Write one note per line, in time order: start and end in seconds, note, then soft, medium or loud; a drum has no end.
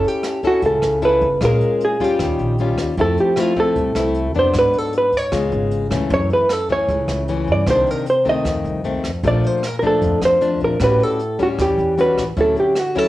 0.00 0.40 C#4 medium
0.00 0.40 E4 soft
0.00 0.40 A4 medium
0.04 0.46 G4 medium
0.04 closed hi-hat soft
0.23 cross-stick soft
0.23 closed hi-hat soft
0.43 0.99 C#4 soft
0.43 0.99 E4 medium
0.43 0.99 A4 medium
0.43 kick soft
0.43 closed hi-hat soft
0.47 0.65 F#4 medium
0.62 0.81 C#2 medium
0.62 1.39 C#3 soft
0.62 1.05 A4 medium
0.62 kick soft
0.62 closed hi-hat soft
0.82 1.23 C#2 medium
0.82 cross-stick soft
0.82 closed hi-hat soft
1.02 1.27 C#4 soft
1.02 1.27 E4 medium
1.02 1.27 A4 medium
1.02 1.44 B4 medium
1.02 closed hi-hat soft
1.21 1.39 G1 medium
1.21 kick soft
1.21 closed hi-hat soft
1.41 1.59 A#1 medium
1.41 2.17 A#2 soft
1.41 1.97 G#3 medium
1.41 1.97 C#4 soft
1.41 1.97 F4 medium
1.41 kick medium
1.41 cross-stick medium
1.41 closed hi-hat soft
1.45 1.83 A#4 medium
1.61 closed hi-hat soft
1.81 closed hi-hat soft
1.85 2.04 G#4 medium
2.00 2.55 G3 medium
2.00 2.56 C#4 medium
2.00 2.56 F4 medium
2.00 kick soft
2.00 closed hi-hat soft
2.04 2.80 G4 medium
2.19 2.37 D#2 medium
2.19 2.96 D#3 soft
2.19 kick medium
2.19 cross-stick medium
2.19 closed hi-hat soft
2.39 2.78 A#1 medium
2.39 closed hi-hat soft
2.58 2.95 G3 medium
2.58 2.95 C#4 soft
2.58 2.95 F4 medium
2.58 closed hi-hat soft
2.78 2.96 D#2 medium
2.78 kick soft
2.78 cross-stick medium
2.78 closed hi-hat soft
2.97 3.16 F2 loud
2.97 3.74 F3 soft
2.97 3.34 A3 soft
2.97 3.34 C4 soft
2.97 3.34 E4 medium
2.97 3.18 A4 medium
2.97 kick soft
2.97 closed hi-hat soft
3.17 3.40 G4 medium
3.17 closed hi-hat soft
3.36 3.53 A3 medium
3.36 3.53 C4 medium
3.36 3.53 E4 medium
3.36 3.58 F4 medium
3.36 cross-stick medium
3.36 closed hi-hat soft
3.56 3.92 A3 soft
3.56 3.92 C4 medium
3.56 3.93 E4 medium
3.56 4.38 A4 medium
3.56 kick soft
3.56 closed hi-hat soft
3.76 3.94 C2 medium
3.76 4.52 C3 soft
3.76 kick medium
3.76 closed hi-hat soft
3.95 4.34 C2 medium
3.95 4.31 A3 medium
3.95 4.31 C4 soft
3.95 4.32 E4 medium
3.95 cross-stick soft
3.95 closed hi-hat soft
4.15 closed hi-hat soft
4.34 4.52 F2 medium
4.34 5.10 F#3 medium
4.34 5.10 B3 medium
4.34 5.10 D4 medium
4.34 kick soft
4.34 closed hi-hat soft
4.39 4.57 C5 medium
4.54 4.72 G#2 medium
4.54 5.30 G#2 medium
4.54 kick soft
4.54 cross-stick medium
4.54 closed hi-hat soft
4.59 4.78 B4 medium
4.73 closed hi-hat soft
4.78 4.96 A4 medium
4.93 closed hi-hat soft
4.98 5.17 B4 medium
5.12 kick soft
5.12 closed hi-hat soft
5.17 5.93 C#5 medium
5.32 5.50 C#2 medium
5.32 6.08 C#3 soft
5.32 5.88 G#3 soft
5.32 5.88 B3 soft
5.32 5.88 F4 medium
5.32 kick medium
5.32 cross-stick medium
5.32 closed hi-hat soft
5.51 5.92 G#1 medium
5.51 closed hi-hat soft
5.71 closed hi-hat soft
5.91 6.09 C#2 medium
5.91 6.46 E3 medium
5.91 6.46 A3 soft
5.91 6.47 C#4 medium
5.91 kick soft
5.91 cross-stick medium
5.91 closed hi-hat soft
6.10 6.29 F#2 loud
6.10 6.87 F#2 soft
6.10 6.32 C#5 medium
6.10 kick soft
6.10 closed hi-hat soft
6.30 6.52 B4 medium
6.30 closed hi-hat soft
6.49 6.71 A4 medium
6.49 cross-stick medium
6.49 closed hi-hat soft
6.69 7.25 E3 medium
6.69 7.25 A3 medium
6.69 7.25 C#4 medium
6.69 7.51 C#5 medium
6.69 kick soft
6.69 closed hi-hat soft
6.88 7.07 C#2 medium
6.88 7.65 C#3 soft
6.88 kick medium
6.88 closed hi-hat soft
7.08 7.49 C#2 medium
7.08 cross-stick medium
7.28 7.64 E3 medium
7.28 7.65 A3 soft
7.28 7.65 C#4 medium
7.28 closed hi-hat soft
7.47 7.65 G2 medium
7.47 kick soft
7.47 closed hi-hat soft
7.52 7.68 D5 medium
7.66 7.85 C2 loud
7.66 8.43 C3 medium
7.66 8.06 D#3 medium
7.66 8.06 A#3 soft
7.66 8.06 D4 medium
7.66 7.91 C5 medium
7.66 kick soft
7.66 cross-stick medium
7.66 closed hi-hat soft
7.86 closed hi-hat soft
7.91 8.09 A#4 medium
8.06 8.28 C5 medium
8.06 closed hi-hat soft
8.25 8.81 D#3 soft
8.25 8.81 A3 soft
8.25 8.81 C4 medium
8.25 kick soft
8.25 closed hi-hat soft
8.29 9.02 D#5 medium
8.45 9.21 F2 soft
8.45 8.63 F2 medium
8.45 kick soft
8.45 cross-stick medium
8.45 closed hi-hat soft
8.64 9.04 C2 medium
8.64 closed hi-hat soft
8.84 9.10 D#3 medium
8.84 9.10 A3 soft
8.84 9.10 C4 medium
8.84 closed hi-hat soft
9.04 9.22 F2 medium
9.04 kick soft
9.04 cross-stick soft
9.04 closed hi-hat soft
9.23 9.42 A#1 medium
9.23 10.00 A#2 soft
9.23 9.63 F3 medium
9.23 9.63 A3 soft
9.23 9.63 D4 medium
9.23 kick soft
9.23 closed hi-hat soft
9.28 9.46 D5 medium
9.44 9.67 C5 medium
9.44 closed hi-hat soft
9.63 9.77 A#4 medium
9.63 cross-stick medium
9.63 closed hi-hat soft
9.79 10.38 F3 soft
9.79 10.38 A3 medium
9.79 10.38 D4 medium
9.79 9.84 A#4 soft
9.79 kick soft
9.79 closed hi-hat soft
9.87 10.25 A4 medium
10.02 10.78 F2 medium
10.02 10.20 F2 medium
10.02 kick medium
10.02 closed hi-hat soft
10.22 10.61 F2 medium
10.22 10.64 C5 medium
10.22 cross-stick medium
10.22 closed hi-hat soft
10.41 10.77 F3 medium
10.41 10.77 A3 medium
10.41 10.77 D4 medium
10.41 closed hi-hat soft
10.61 10.79 A#1 medium
10.61 10.83 A#4 medium
10.61 kick soft
10.61 closed hi-hat soft
10.80 10.98 A1 medium
10.80 11.57 A2 soft
10.80 11.19 G3 soft
10.80 11.19 C#4 medium
10.80 11.20 F#4 medium
10.80 11.03 B4 medium
10.80 kick soft
10.80 cross-stick soft
10.80 closed hi-hat soft
11.00 11.42 A4 medium
11.00 closed hi-hat soft
11.19 closed hi-hat soft
11.39 11.95 G3 medium
11.39 11.94 C#4 medium
11.39 11.48 F#4 medium
11.39 kick soft
11.39 closed hi-hat soft
11.59 11.77 E2 medium
11.59 12.35 E3 soft
11.59 12.00 G4 medium
11.59 kick medium
11.59 cross-stick medium
11.59 closed hi-hat soft
11.78 12.17 E2 medium
11.78 closed hi-hat soft
11.98 12.23 G3 medium
11.98 12.23 C#4 medium
11.98 12.23 F#4 medium
11.98 12.26 B4 medium
11.98 closed hi-hat soft
12.17 12.35 A1 medium
12.17 kick soft
12.17 cross-stick soft
12.17 closed hi-hat soft
12.37 12.55 D2 medium
12.37 13.08 D3 medium
12.37 12.76 F#3 medium
12.37 12.76 C#4 medium
12.37 12.76 E4 soft
12.37 12.59 A4 medium
12.37 kick medium
12.37 closed hi-hat soft
12.56 12.79 G4 medium
12.56 closed hi-hat soft
12.75 cross-stick medium
12.75 closed hi-hat soft
12.79 12.98 F#4 medium
12.95 13.08 F#3 medium
12.95 13.08 C#4 medium
12.95 13.08 E4 medium
12.95 13.08 A4 medium
12.95 kick soft
12.95 closed hi-hat soft